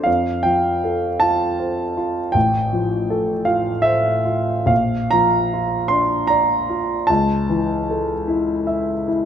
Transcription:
0, 0, Header, 1, 2, 480
1, 0, Start_track
1, 0, Tempo, 756620
1, 46, Time_signature, 6, 3, 24, 8
1, 2444, Tempo, 836820
1, 3404, Tempo, 790514
1, 5666, End_track
2, 0, Start_track
2, 0, Title_t, "Grand piano"
2, 0, Program_c, 0, 0
2, 0, Control_c, 0, 64, 127
2, 22, Note_on_c, 0, 77, 65
2, 38, Note_on_c, 0, 41, 40
2, 56, Control_c, 0, 64, 0
2, 154, Control_c, 0, 64, 127
2, 272, Note_on_c, 0, 79, 68
2, 280, Note_off_c, 0, 77, 0
2, 287, Note_on_c, 0, 53, 31
2, 533, Note_on_c, 0, 69, 32
2, 678, Note_off_c, 0, 53, 0
2, 759, Note_on_c, 0, 81, 74
2, 767, Note_off_c, 0, 79, 0
2, 774, Note_on_c, 0, 65, 37
2, 920, Note_off_c, 0, 69, 0
2, 1011, Note_on_c, 0, 72, 37
2, 1157, Note_off_c, 0, 65, 0
2, 1251, Note_on_c, 0, 65, 39
2, 1393, Note_off_c, 0, 72, 0
2, 1463, Note_off_c, 0, 41, 0
2, 1473, Note_on_c, 0, 79, 70
2, 1483, Note_off_c, 0, 81, 0
2, 1487, Note_on_c, 0, 33, 45
2, 1491, Note_off_c, 0, 65, 0
2, 1502, Control_c, 0, 64, 0
2, 1596, Control_c, 0, 64, 127
2, 1730, Note_on_c, 0, 53, 37
2, 1969, Note_on_c, 0, 69, 36
2, 2113, Note_off_c, 0, 53, 0
2, 2189, Note_on_c, 0, 77, 63
2, 2198, Note_off_c, 0, 79, 0
2, 2202, Note_on_c, 0, 65, 40
2, 2346, Note_off_c, 0, 69, 0
2, 2423, Note_on_c, 0, 76, 75
2, 2436, Note_off_c, 0, 77, 0
2, 2439, Note_on_c, 0, 72, 42
2, 2579, Note_off_c, 0, 65, 0
2, 2675, Note_on_c, 0, 65, 36
2, 2827, Note_off_c, 0, 72, 0
2, 2907, Note_off_c, 0, 33, 0
2, 2908, Note_on_c, 0, 34, 43
2, 2912, Note_on_c, 0, 77, 68
2, 2922, Note_off_c, 0, 76, 0
2, 2930, Note_off_c, 0, 65, 0
2, 2943, Control_c, 0, 64, 0
2, 3061, Control_c, 0, 64, 127
2, 3163, Note_on_c, 0, 82, 83
2, 3168, Note_off_c, 0, 77, 0
2, 3175, Note_on_c, 0, 53, 41
2, 3409, Note_on_c, 0, 65, 41
2, 3543, Note_off_c, 0, 53, 0
2, 3620, Note_on_c, 0, 84, 69
2, 3629, Note_off_c, 0, 82, 0
2, 3633, Note_on_c, 0, 62, 39
2, 3779, Note_off_c, 0, 65, 0
2, 3858, Note_on_c, 0, 82, 74
2, 3863, Note_off_c, 0, 84, 0
2, 3875, Note_on_c, 0, 74, 41
2, 4012, Note_off_c, 0, 62, 0
2, 4114, Note_on_c, 0, 65, 39
2, 4259, Note_off_c, 0, 74, 0
2, 4318, Note_off_c, 0, 34, 0
2, 4341, Note_on_c, 0, 81, 70
2, 4349, Note_off_c, 0, 82, 0
2, 4357, Note_off_c, 0, 65, 0
2, 4358, Note_on_c, 0, 37, 51
2, 4365, Control_c, 0, 64, 0
2, 4459, Control_c, 0, 64, 127
2, 4599, Note_on_c, 0, 52, 41
2, 4844, Note_on_c, 0, 69, 33
2, 4982, Note_off_c, 0, 52, 0
2, 5075, Note_on_c, 0, 64, 40
2, 5223, Note_off_c, 0, 69, 0
2, 5313, Note_on_c, 0, 76, 40
2, 5460, Note_off_c, 0, 64, 0
2, 5553, Note_off_c, 0, 81, 0
2, 5562, Note_on_c, 0, 64, 39
2, 5666, Note_off_c, 0, 37, 0
2, 5666, Note_off_c, 0, 64, 0
2, 5666, Note_off_c, 0, 76, 0
2, 5666, End_track
0, 0, End_of_file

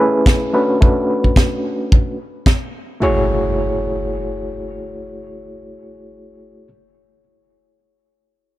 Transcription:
0, 0, Header, 1, 4, 480
1, 0, Start_track
1, 0, Key_signature, 3, "minor"
1, 0, Tempo, 550459
1, 711, Time_signature, 4, 2, 24, 8
1, 7485, End_track
2, 0, Start_track
2, 0, Title_t, "Reed electric piano"
2, 0, Program_c, 0, 4
2, 0, Note_on_c, 0, 57, 81
2, 0, Note_on_c, 0, 61, 72
2, 0, Note_on_c, 0, 64, 75
2, 0, Note_on_c, 0, 68, 76
2, 0, Note_on_c, 0, 71, 91
2, 444, Note_off_c, 0, 57, 0
2, 445, Note_off_c, 0, 61, 0
2, 446, Note_off_c, 0, 64, 0
2, 447, Note_off_c, 0, 68, 0
2, 449, Note_off_c, 0, 71, 0
2, 467, Note_on_c, 0, 57, 72
2, 470, Note_on_c, 0, 61, 69
2, 471, Note_on_c, 0, 62, 65
2, 474, Note_on_c, 0, 66, 70
2, 475, Note_on_c, 0, 71, 82
2, 683, Note_off_c, 0, 57, 0
2, 685, Note_off_c, 0, 61, 0
2, 685, Note_off_c, 0, 62, 0
2, 687, Note_off_c, 0, 66, 0
2, 688, Note_off_c, 0, 71, 0
2, 703, Note_on_c, 0, 57, 70
2, 708, Note_on_c, 0, 61, 66
2, 712, Note_on_c, 0, 62, 70
2, 717, Note_on_c, 0, 66, 69
2, 722, Note_on_c, 0, 71, 80
2, 1886, Note_off_c, 0, 57, 0
2, 1888, Note_off_c, 0, 61, 0
2, 1890, Note_off_c, 0, 62, 0
2, 1893, Note_off_c, 0, 66, 0
2, 1895, Note_off_c, 0, 71, 0
2, 2619, Note_on_c, 0, 57, 73
2, 2626, Note_on_c, 0, 64, 67
2, 2633, Note_on_c, 0, 66, 69
2, 2639, Note_on_c, 0, 68, 70
2, 2645, Note_on_c, 0, 73, 84
2, 5818, Note_off_c, 0, 57, 0
2, 5822, Note_off_c, 0, 64, 0
2, 5825, Note_off_c, 0, 66, 0
2, 5828, Note_off_c, 0, 68, 0
2, 5831, Note_off_c, 0, 73, 0
2, 7485, End_track
3, 0, Start_track
3, 0, Title_t, "Impact"
3, 0, Program_c, 1, 103
3, 2631, Note_on_c, 1, 60, 60
3, 5859, Note_off_c, 1, 60, 0
3, 7485, End_track
4, 0, Start_track
4, 0, Title_t, "Drums"
4, 227, Note_on_c, 9, 36, 111
4, 237, Note_on_c, 9, 38, 111
4, 315, Note_off_c, 9, 36, 0
4, 324, Note_off_c, 9, 38, 0
4, 716, Note_on_c, 9, 36, 106
4, 803, Note_off_c, 9, 36, 0
4, 1084, Note_on_c, 9, 36, 53
4, 1172, Note_off_c, 9, 36, 0
4, 1188, Note_on_c, 9, 36, 95
4, 1197, Note_on_c, 9, 38, 109
4, 1275, Note_off_c, 9, 36, 0
4, 1284, Note_off_c, 9, 38, 0
4, 1675, Note_on_c, 9, 36, 106
4, 1762, Note_off_c, 9, 36, 0
4, 2146, Note_on_c, 9, 36, 98
4, 2151, Note_on_c, 9, 38, 102
4, 2233, Note_off_c, 9, 36, 0
4, 2238, Note_off_c, 9, 38, 0
4, 7485, End_track
0, 0, End_of_file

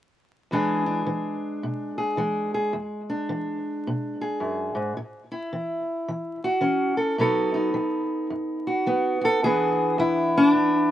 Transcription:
0, 0, Header, 1, 2, 480
1, 0, Start_track
1, 0, Tempo, 557103
1, 433, Time_signature, 4, 2, 24, 8
1, 9401, End_track
2, 0, Start_track
2, 0, Title_t, "Steel-string acoustic guitar"
2, 0, Program_c, 0, 25
2, 439, Note_on_c, 0, 40, 62
2, 449, Note_on_c, 0, 52, 51
2, 456, Note_on_c, 0, 56, 51
2, 456, Note_on_c, 0, 62, 54
2, 462, Note_on_c, 0, 68, 56
2, 740, Note_off_c, 0, 62, 0
2, 743, Note_on_c, 0, 62, 48
2, 882, Note_off_c, 0, 40, 0
2, 914, Note_off_c, 0, 52, 0
2, 918, Note_on_c, 0, 52, 52
2, 1362, Note_off_c, 0, 52, 0
2, 1407, Note_on_c, 0, 47, 52
2, 1694, Note_off_c, 0, 68, 0
2, 1705, Note_on_c, 0, 68, 49
2, 1847, Note_off_c, 0, 47, 0
2, 1869, Note_off_c, 0, 56, 0
2, 1872, Note_on_c, 0, 52, 55
2, 1879, Note_on_c, 0, 56, 51
2, 2181, Note_off_c, 0, 68, 0
2, 2192, Note_on_c, 0, 68, 52
2, 2320, Note_off_c, 0, 52, 0
2, 2339, Note_off_c, 0, 62, 0
2, 2341, Note_off_c, 0, 68, 0
2, 2352, Note_on_c, 0, 40, 67
2, 2667, Note_on_c, 0, 62, 48
2, 2800, Note_off_c, 0, 40, 0
2, 2836, Note_on_c, 0, 52, 55
2, 3282, Note_off_c, 0, 52, 0
2, 3337, Note_on_c, 0, 47, 56
2, 3631, Note_on_c, 0, 68, 54
2, 3773, Note_off_c, 0, 47, 0
2, 3792, Note_on_c, 0, 42, 54
2, 4087, Note_off_c, 0, 42, 0
2, 4091, Note_on_c, 0, 44, 57
2, 4260, Note_off_c, 0, 62, 0
2, 4262, Note_off_c, 0, 68, 0
2, 4273, Note_off_c, 0, 44, 0
2, 4280, Note_off_c, 0, 56, 0
2, 4281, Note_on_c, 0, 45, 66
2, 4580, Note_on_c, 0, 64, 50
2, 4725, Note_off_c, 0, 45, 0
2, 4762, Note_on_c, 0, 52, 52
2, 5205, Note_off_c, 0, 52, 0
2, 5242, Note_on_c, 0, 52, 55
2, 5550, Note_on_c, 0, 66, 53
2, 5682, Note_off_c, 0, 52, 0
2, 5693, Note_on_c, 0, 52, 54
2, 5698, Note_on_c, 0, 61, 50
2, 6003, Note_off_c, 0, 66, 0
2, 6007, Note_on_c, 0, 69, 56
2, 6151, Note_off_c, 0, 52, 0
2, 6167, Note_off_c, 0, 61, 0
2, 6170, Note_off_c, 0, 69, 0
2, 6176, Note_off_c, 0, 64, 0
2, 6189, Note_on_c, 0, 47, 65
2, 6197, Note_on_c, 0, 54, 51
2, 6201, Note_on_c, 0, 59, 51
2, 6205, Note_on_c, 0, 63, 54
2, 6212, Note_on_c, 0, 69, 60
2, 6486, Note_off_c, 0, 63, 0
2, 6496, Note_on_c, 0, 63, 48
2, 6638, Note_off_c, 0, 47, 0
2, 6658, Note_off_c, 0, 54, 0
2, 6668, Note_on_c, 0, 54, 55
2, 7118, Note_off_c, 0, 54, 0
2, 7154, Note_on_c, 0, 42, 54
2, 7467, Note_off_c, 0, 69, 0
2, 7470, Note_on_c, 0, 66, 51
2, 7601, Note_off_c, 0, 42, 0
2, 7630, Note_off_c, 0, 59, 0
2, 7637, Note_on_c, 0, 54, 53
2, 7643, Note_on_c, 0, 59, 52
2, 7928, Note_off_c, 0, 66, 0
2, 7938, Note_on_c, 0, 66, 55
2, 7965, Note_off_c, 0, 66, 0
2, 7969, Note_on_c, 0, 69, 86
2, 8083, Note_off_c, 0, 54, 0
2, 8093, Note_off_c, 0, 63, 0
2, 8098, Note_off_c, 0, 59, 0
2, 8127, Note_on_c, 0, 40, 69
2, 8131, Note_off_c, 0, 69, 0
2, 8134, Note_on_c, 0, 68, 90
2, 8139, Note_on_c, 0, 52, 45
2, 8146, Note_on_c, 0, 59, 46
2, 8150, Note_on_c, 0, 62, 45
2, 8567, Note_off_c, 0, 40, 0
2, 8599, Note_on_c, 0, 40, 70
2, 8605, Note_off_c, 0, 68, 0
2, 8612, Note_on_c, 0, 64, 86
2, 8915, Note_off_c, 0, 62, 0
2, 8938, Note_on_c, 0, 61, 95
2, 9033, Note_off_c, 0, 61, 0
2, 9033, Note_on_c, 0, 62, 95
2, 9042, Note_off_c, 0, 40, 0
2, 9074, Note_on_c, 0, 40, 61
2, 9387, Note_off_c, 0, 64, 0
2, 9401, Note_off_c, 0, 40, 0
2, 9401, Note_off_c, 0, 52, 0
2, 9401, Note_off_c, 0, 59, 0
2, 9401, Note_off_c, 0, 62, 0
2, 9401, End_track
0, 0, End_of_file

